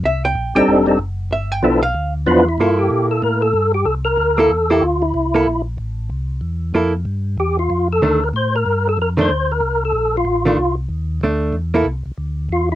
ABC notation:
X:1
M:4/4
L:1/8
Q:"Swing" 1/4=188
K:Cmix
V:1 name="Tonewheel organ"
z3 [G,CD_EA]2 [G,CDEA] z2 | z2 [F,=B,DEA] z3 [F,B,DEF=B] E | F G2 A B A2 G | A B2 A2 G F E- |
E3 z4 z | z6 G F- | F A2 B c B2 A | B c2 B2 A2 F- |
F3 z4 z | z6 F E |]
V:2 name="Hollow-body jazz guitar"
e g2 g2 z3 | e g2 f2 z3 | [B,EA]4- [B,EA] z3 | z3 [B,EA] z [B,EA] z2 |
z [B,EA] z6 | z2 [B,EA] z4 z | z2 [_E,A,D] z4 z | z [_E,A,D] z6 |
z [_E,A,D] z4 [A,D]2 | z [B,EA] z6 |]
V:3 name="Tonewheel organ" clef=bass
C,,2 B,,, B,,, F,,,2 ^F,,,2 | G,,,2 =B,,,2 D,,2 E,,2 | G,,2 B,,2 A,,2 G,,2 | C,,2 D,,2 E,,2 D,,2 |
C,,2 B,,,2 A,,,2 C,,2 | E,,2 F,,2 G,,2 E,,2 | F,,2 D,,2 A,,2 G,,2 | F,,2 D,,2 C,,2 B,,,2 |
A,,,2 C,,2 _E,,2 D,,2 | E,,2 C,, C,, D,,2 E,,2 |]